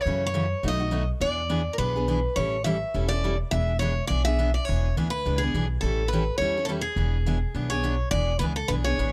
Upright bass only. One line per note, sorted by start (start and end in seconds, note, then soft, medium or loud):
0.05 0.52 F#2 medium
0.63 1.09 B1 medium
1.20 1.67 E2 medium
1.78 2.25 B1 medium
2.36 2.82 A1 medium
2.94 3.41 E1 medium
3.52 3.98 E1 medium
4.10 4.56 B1 medium
4.69 4.91 E1 medium
4.97 5.21 D2 medium
5.26 5.50 C#2 medium
5.54 5.78 B1 medium
5.83 6.29 A1 medium
6.40 6.86 E2 medium
6.96 7.43 E1 medium
7.55 8.01 B1 medium
8.11 8.35 E1 medium
8.40 8.65 C#2 medium
8.68 8.94 B1 medium
8.98 9.12 A1 medium